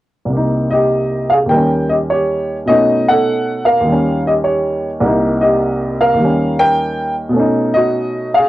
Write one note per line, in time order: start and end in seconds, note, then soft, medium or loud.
0.25 1.47 C2 soft
0.29 1.49 C3 soft
0.29 1.51 A#3 soft
0.37 1.53 D#4 soft
0.71 1.28 G4 medium
0.71 1.27 D#5 medium
1.30 1.37 G#4 medium
1.30 1.35 F5 medium
1.46 2.66 D#2 soft
1.46 2.68 D#3 soft
1.46 1.87 G5 medium
1.51 2.70 G3 soft
1.51 1.88 A#4 medium
1.57 2.68 C#4 soft
1.89 1.97 G4 soft
1.89 1.94 D#5 medium
2.10 2.57 G4 soft
2.10 2.56 C#5 medium
2.66 3.84 B2 soft
2.66 3.85 A3 soft
2.66 3.86 C#4 soft
2.66 3.06 F#4 soft
2.66 3.09 D#5 medium
2.71 3.87 D#4 medium
3.08 3.64 A4 medium
3.08 3.63 F#5 medium
3.65 4.21 A#4 medium
3.65 4.20 F5 medium
3.80 4.99 D#2 soft
3.85 5.02 D#3 soft
3.85 5.04 G3 soft
3.92 5.05 C#4 soft
4.27 4.32 G4 soft
4.27 4.32 D#5 medium
4.44 4.89 G4 soft
4.44 4.89 C#5 medium
5.00 6.18 C2 soft
5.00 6.19 C3 soft
5.00 6.20 A#3 soft
5.06 6.21 D#4 medium
5.41 5.97 G4 medium
5.41 6.02 D#5 medium
6.01 6.55 A#4 medium
6.01 6.55 F5 medium
6.14 7.33 D#2 soft
6.14 7.35 D#3 soft
6.21 7.37 G3 soft
6.21 7.35 C#4 soft
6.59 7.14 A#4 medium
6.59 7.14 G5 medium
7.29 8.49 B2 medium
7.29 8.49 A3 soft
7.36 8.49 C#4 soft
7.36 8.49 D#4 medium
7.74 8.32 F#4 soft
7.74 8.31 D#5 medium
8.34 8.49 G#4 medium
8.34 8.49 F5 medium